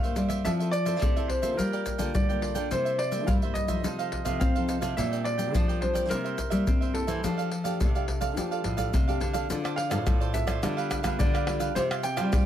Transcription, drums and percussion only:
0.04 pandeiro soft
0.04 shaker soft
0.16 pandeiro medium
0.16 shaker medium
0.30 pandeiro medium
0.30 shaker medium
0.45 pandeiro medium
0.45 shaker medium
0.45 surdo medium
0.60 pandeiro soft
0.60 shaker soft
0.73 pandeiro medium
0.73 shaker medium
0.86 pandeiro medium
0.86 shaker medium
1.02 pandeiro medium
1.02 shaker medium
1.02 surdo medium
1.17 pandeiro soft
1.17 shaker soft
1.29 pandeiro medium
1.29 surdo soft
1.43 pandeiro medium
1.43 shaker medium
1.43 surdo soft
1.59 pandeiro medium
1.59 shaker medium
1.59 surdo medium
1.73 pandeiro soft
1.73 shaker soft
1.86 pandeiro medium
1.86 shaker medium
1.86 surdo soft
1.99 pandeiro medium
1.99 shaker medium
1.99 surdo soft
2.15 pandeiro medium
2.15 shaker medium
2.15 surdo medium
2.30 pandeiro soft
2.30 shaker soft
2.42 pandeiro medium
2.55 pandeiro medium
2.55 shaker medium
2.71 pandeiro medium
2.71 shaker medium
2.71 surdo medium
2.86 pandeiro soft
2.86 shaker soft
2.99 pandeiro medium
3.12 pandeiro soft
3.12 shaker medium
3.28 pandeiro medium
3.28 shaker medium
3.28 surdo medium
3.42 pandeiro soft
3.42 shaker soft
3.55 pandeiro medium
3.55 shaker medium
3.55 surdo soft
3.68 pandeiro medium
3.68 shaker medium
3.68 surdo soft
3.84 pandeiro medium
3.84 shaker medium
3.84 surdo medium
3.99 pandeiro soft
3.99 shaker soft
4.12 pandeiro medium
4.12 surdo soft
4.25 pandeiro medium
4.25 shaker medium
4.25 surdo soft
4.41 pandeiro medium
4.41 shaker medium
4.41 surdo medium
4.56 pandeiro soft
4.56 shaker soft
4.69 pandeiro medium
4.69 shaker medium
4.82 pandeiro medium
4.82 shaker medium
4.98 pandeiro medium
4.98 shaker medium
4.98 surdo soft
5.13 pandeiro soft
5.13 shaker soft
5.25 pandeiro medium
5.39 pandeiro medium
5.39 shaker medium
5.55 pandeiro medium
5.55 shaker medium
5.55 surdo medium
5.69 pandeiro soft
5.69 shaker soft
5.82 pandeiro medium
5.82 surdo soft
5.95 pandeiro medium
5.95 shaker medium
5.95 surdo soft
6.11 pandeiro medium
6.11 shaker medium
6.11 surdo medium
6.26 pandeiro soft
6.26 shaker soft
6.38 pandeiro medium
6.38 shaker medium
6.38 surdo soft
6.52 pandeiro medium
6.52 shaker medium
6.52 surdo soft
6.67 pandeiro medium
6.67 shaker medium
6.67 surdo loud
6.82 pandeiro soft
6.82 shaker soft
6.95 pandeiro medium
7.08 pandeiro medium
7.08 shaker medium
7.24 pandeiro medium
7.24 shaker medium
7.24 surdo medium
7.39 pandeiro soft
7.39 shaker soft
7.51 pandeiro medium
7.65 pandeiro medium
7.65 shaker medium
7.81 pandeiro medium
7.81 shaker medium
7.81 surdo medium
7.95 pandeiro soft
7.95 shaker soft
8.08 pandeiro medium
8.08 surdo soft
8.21 pandeiro medium
8.21 shaker medium
8.21 surdo soft
8.37 pandeiro medium
8.37 shaker medium
8.37 surdo medium
8.52 pandeiro soft
8.52 shaker soft
8.64 pandeiro medium
8.64 surdo soft
8.78 pandeiro medium
8.78 shaker medium
8.78 surdo soft
8.94 pandeiro medium
8.94 shaker medium
8.94 surdo medium
9.08 pandeiro soft
9.08 shaker soft
9.21 pandeiro medium
9.21 surdo soft
9.34 pandeiro medium
9.34 shaker medium
9.50 pandeiro medium
9.50 shaker medium
9.50 surdo medium
9.65 pandeiro soft
9.65 tamborim medium
9.65 shaker soft
9.78 pandeiro medium
9.91 pandeiro medium
9.91 tamborim medium
9.91 shaker medium
10.07 pandeiro medium
10.07 tamborim medium
10.07 shaker medium
10.07 surdo loud
10.21 pandeiro soft
10.21 shaker soft
10.34 pandeiro medium
10.34 shaker medium
10.34 surdo soft
10.47 pandeiro medium
10.47 tamborim medium
10.47 shaker medium
10.47 surdo soft
10.63 pandeiro medium
10.63 tamborim medium
10.63 shaker medium
10.63 surdo medium
10.78 pandeiro soft
10.78 shaker soft
10.91 pandeiro medium
10.91 tamborim medium
10.91 shaker medium
10.91 surdo soft
11.04 pandeiro medium
11.04 tamborim medium
11.04 shaker medium
11.04 surdo soft
11.20 pandeiro medium
11.20 shaker medium
11.20 surdo loud
11.35 pandeiro soft
11.35 tamborim medium
11.35 shaker soft
11.47 pandeiro medium
11.47 tamborim medium
11.60 pandeiro medium
11.60 shaker medium
11.76 pandeiro medium
11.76 shaker medium
11.76 surdo medium
11.91 pandeiro soft
11.91 tamborim medium
11.91 shaker soft
12.03 pandeiro medium
12.03 shaker medium
12.17 pandeiro medium
12.17 tamborim medium
12.17 shaker medium
12.33 pandeiro medium
12.33 tamborim medium
12.33 shaker medium
12.33 surdo loud

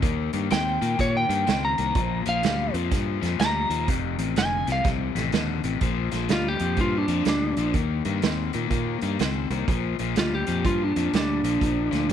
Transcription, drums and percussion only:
0.03 kick loud
0.03 closed hi-hat medium
0.33 closed hi-hat medium
0.51 snare loud
0.51 closed hi-hat medium
0.82 closed hi-hat medium
0.99 kick medium
0.99 closed hi-hat medium
1.30 closed hi-hat medium
1.47 snare loud
1.47 closed hi-hat medium
1.78 closed hi-hat medium
1.95 kick loud
1.95 closed hi-hat medium
2.26 closed hi-hat medium
2.43 snare loud
2.43 closed hi-hat medium
2.74 closed hi-hat medium
2.91 kick loud
2.91 snare soft
2.91 closed hi-hat medium
3.23 snare soft
3.23 closed hi-hat medium
3.40 snare loud
3.40 closed hi-hat medium
3.70 closed hi-hat medium
3.88 kick loud
3.88 closed hi-hat medium
4.19 closed hi-hat medium
4.36 snare loud
4.36 closed hi-hat medium
4.67 snare soft
4.67 closed hi-hat medium
4.85 kick loud
4.85 snare soft
4.85 closed hi-hat medium
5.16 snare soft
5.16 closed hi-hat medium
5.32 snare medium
5.32 closed hi-hat medium
5.64 closed hi-hat medium
5.81 kick loud
5.81 closed hi-hat medium
6.12 snare soft
6.12 closed hi-hat medium
6.29 snare loud
6.29 closed hi-hat medium
6.60 closed hi-hat medium
6.77 kick loud
6.77 closed hi-hat medium
7.08 closed hi-hat medium
7.25 snare loud
7.25 closed hi-hat medium
7.57 closed hi-hat medium
7.74 kick loud
7.74 closed hi-hat medium
8.05 closed hi-hat medium
8.22 snare loud
8.22 closed hi-hat medium
8.53 closed hi-hat medium
8.71 kick medium
8.71 closed hi-hat medium
9.01 closed hi-hat medium
9.19 snare medium
9.19 closed hi-hat medium
9.51 closed hi-hat medium
9.68 kick loud
9.68 closed hi-hat medium
9.99 closed hi-hat medium
10.16 snare loud
10.16 closed hi-hat medium
10.47 closed hi-hat medium
10.65 kick loud
10.65 closed hi-hat medium
10.96 closed hi-hat medium
11.14 snare loud
11.14 closed hi-hat medium
11.44 closed hi-hat medium
11.61 kick loud
11.61 closed hi-hat medium
11.92 snare soft
11.92 closed hi-hat medium
12.10 closed hi-hat medium

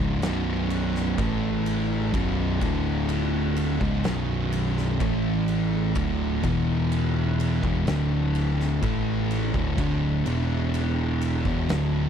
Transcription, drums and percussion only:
0.22 snare loud
0.22 ride loud
0.70 ride medium
0.95 snare soft
1.18 kick loud
1.18 ride loud
1.66 ride medium
2.14 kick loud
2.14 ride loud
2.61 kick loud
2.61 ride medium
3.09 ride loud
3.56 ride medium
3.81 kick loud
4.04 snare loud
4.04 ride medium
4.52 ride medium
4.77 snare soft
5.00 kick loud
5.00 ride loud
5.48 ride medium
5.95 kick loud
5.95 ride loud
6.43 kick loud
6.43 ride medium
6.92 ride loud
7.40 ride medium
7.63 kick loud
7.87 snare loud
7.87 ride loud
8.35 ride medium
8.60 snare soft
8.82 kick loud
8.82 ride loud
9.31 ride medium
9.54 kick loud
9.78 kick loud
9.78 ride loud
10.26 ride medium
10.74 ride loud
11.21 ride medium
11.45 kick loud
11.69 snare loud
11.69 ride loud

